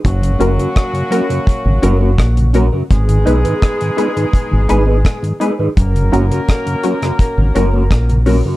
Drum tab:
HH |xxxxxxxxx-x-xxx-|xxxxxxxxx-x-xxx-|xxxxxxxxx-x-xxo-|
SD |----r-------r---|----r-------r---|----r--r----r---|
BD |o---o---o---o---|o---o---o---o---|o---o---o---o---|